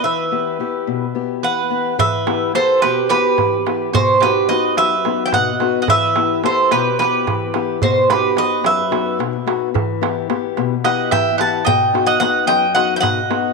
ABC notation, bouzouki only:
X:1
M:7/8
L:1/16
Q:1/4=109
K:Em
V:1 name="Bouzouki"
e8- e2 f4 | e4 c2 B2 B6 | c2 B2 ^d2 e3- e/2 g/2 f3- f/2 f/2 | e4 c2 B2 B6 |
c2 B2 ^d2 e4 z4 | z8 f2 g2 a2 | g3 f f2 g2 f3/2 g/2 f4 |]